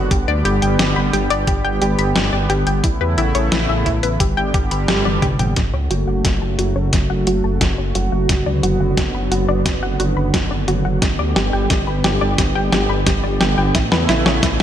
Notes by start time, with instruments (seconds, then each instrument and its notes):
Already playing: analog synth pad D3 B3
0.11 detuned saw bass G1, analog synth pad G3 G4, synth arpeggio sound G4, kick, closed hi-hat
0.28 detuned saw bass D2, synth arpeggio sound D5
0.45 detuned saw bass G1, synth arpeggio sound G4, closed hi-hat
0.62 detuned saw bass G1, synth arpeggio sound G5, closed hi-hat
0.79 detuned saw bass G1, synth arpeggio sound G4, snare, closed hi-hat
0.96 detuned saw bass G1, synth arpeggio sound B5
1.13 detuned saw bass G1, synth arpeggio sound G4, closed hi-hat
1.30 detuned saw bass G1, synth arpeggio sound D5, closed hi-hat
1.47 detuned saw bass G1, synth arpeggio sound G4, kick, closed hi-hat
1.64 detuned saw bass G1, synth arpeggio sound G5
1.81 detuned saw bass G1, synth arpeggio sound G4, closed hi-hat
1.98 detuned saw bass G1, synth arpeggio sound B5, closed hi-hat
2.15 detuned saw bass G1, synth arpeggio sound G4, snare, closed hi-hat
2.32 detuned saw bass G1, synth arpeggio sound D5
2.49 detuned saw bass G1, synth arpeggio sound G4, closed hi-hat
2.67 detuned saw bass G1, synth arpeggio sound G5, closed hi-hat
2.84 detuned saw bass A1, analog synth pad C#3 A3 E4, synth arpeggio sound E4, kick, closed hi-hat
3.01 detuned saw bass E2, synth arpeggio sound B4
3.18 detuned saw bass A1, synth arpeggio sound E4, closed hi-hat
3.35 detuned saw bass A1, synth arpeggio sound C#5, closed hi-hat
3.52 detuned saw bass A1, synth arpeggio sound E4, snare, closed hi-hat
3.69 detuned saw bass A1, synth arpeggio sound E5
3.86 detuned saw bass A1, synth arpeggio sound E4, kick, closed hi-hat
4.03 detuned saw bass A1, synth arpeggio sound B4, closed hi-hat
4.20 detuned saw bass G1, analog synth pad D3 G3 G4, synth arpeggio sound G4, kick, closed hi-hat
4.37 detuned saw bass G1, synth arpeggio sound G5
4.54 detuned saw bass G1, synth arpeggio sound G4, kick, closed hi-hat
4.71 detuned saw bass G1, synth arpeggio sound B5, closed hi-hat
4.88 detuned saw bass G1, synth arpeggio sound G4, snare, closed hi-hat
5.05 detuned saw bass G1, synth arpeggio sound D5, high tom
5.22 detuned saw bass G1, synth arpeggio sound G4, kick, closed hi-hat, mid tom
5.39 detuned saw bass G1, synth arpeggio sound G5, closed hi-hat, mid tom
5.56 detuned saw bass F#1, analog synth pad C#3 F#3 A3 F#4, synth arpeggio sound F#4, kick, snare, closed hi-hat
5.73 detuned saw bass C#2, synth arpeggio sound C#5
5.90 detuned saw bass F#1, synth arpeggio sound F#4, closed hi-hat
6.08 detuned saw bass F#1, synth arpeggio sound F#5
6.25 detuned saw bass F#1, synth arpeggio sound F#4, kick, snare, closed hi-hat
6.42 detuned saw bass F#1, synth arpeggio sound A5
6.59 detuned saw bass F#1, synth arpeggio sound F#4, closed hi-hat
6.76 detuned saw bass F#1, synth arpeggio sound C#5
6.93 detuned saw bass F#1, synth arpeggio sound F#4, kick, snare, closed hi-hat
7.10 detuned saw bass F#1, synth arpeggio sound F#5
7.27 detuned saw bass F#1, synth arpeggio sound F#4, closed hi-hat
7.44 detuned saw bass F#1, synth arpeggio sound A5
7.61 detuned saw bass F#1, synth arpeggio sound F#4, kick, snare, closed hi-hat
7.78 detuned saw bass F#1, synth arpeggio sound C#5
7.95 detuned saw bass F#1, synth arpeggio sound F#4, closed hi-hat
8.12 detuned saw bass F#1, synth arpeggio sound F#5
8.29 detuned saw bass F#1, analog synth pad D3 B3, synth arpeggio sound F#4, kick, snare, closed hi-hat
8.46 detuned saw bass C#2, synth arpeggio sound D5
8.63 detuned saw bass F#1, synth arpeggio sound F#4, closed hi-hat
8.80 detuned saw bass F#1, synth arpeggio sound F#5
8.97 detuned saw bass F#1, synth arpeggio sound F#4, kick, snare, closed hi-hat
9.14 detuned saw bass F#1, synth arpeggio sound B5
9.32 detuned saw bass F#1, synth arpeggio sound F#4, closed hi-hat
9.49 detuned saw bass F#1, synth arpeggio sound D5
9.66 detuned saw bass F#1, synth arpeggio sound F#4, kick, snare, closed hi-hat
9.83 detuned saw bass F#1, synth arpeggio sound F#5
10.00 detuned saw bass F#1, synth arpeggio sound F#4, closed hi-hat
10.17 detuned saw bass F#1, synth arpeggio sound B5
10.34 detuned saw bass F#1, synth arpeggio sound F#4, kick, snare, closed hi-hat
10.51 detuned saw bass F#1, synth arpeggio sound D5
10.68 detuned saw bass F#1, synth arpeggio sound F#4, closed hi-hat
10.85 detuned saw bass F#1, synth arpeggio sound F#5
11.02 detuned saw bass G1, analog synth pad G3 B3 G4, synth arpeggio sound G4, kick, snare, closed hi-hat
11.19 detuned saw bass D2, synth arpeggio sound D5
11.36 detuned saw bass G1, synth arpeggio sound G4, snare, closed hi-hat
11.53 detuned saw bass G1, synth arpeggio sound G5
11.70 detuned saw bass G1, synth arpeggio sound G4, kick, snare, closed hi-hat
11.87 detuned saw bass G1, synth arpeggio sound B5
12.04 detuned saw bass G1, synth arpeggio sound G4, snare, closed hi-hat
12.21 detuned saw bass G1, synth arpeggio sound D5
12.38 detuned saw bass G1, synth arpeggio sound G4, kick, snare, closed hi-hat
12.55 detuned saw bass G1, synth arpeggio sound G5
12.72 detuned saw bass G1, synth arpeggio sound G4, snare, closed hi-hat
12.89 detuned saw bass G1, synth arpeggio sound B5
13.07 detuned saw bass G1, synth arpeggio sound G4, kick, snare, closed hi-hat
13.24 detuned saw bass G1, synth arpeggio sound D5
13.41 detuned saw bass G1, synth arpeggio sound G4, snare, closed hi-hat
13.58 detuned saw bass G1, synth arpeggio sound G5
13.75 detuned saw bass A1, analog synth pad C#3 A3 E4, synth arpeggio sound E4, kick, snare, closed hi-hat
13.92 detuned saw bass E2, synth arpeggio sound B4, snare
14.09 detuned saw bass A1, synth arpeggio sound E4, snare, closed hi-hat
14.26 detuned saw bass A1, synth arpeggio sound C#5, snare
14.43 detuned saw bass A1, synth arpeggio sound E4, kick, snare, closed hi-hat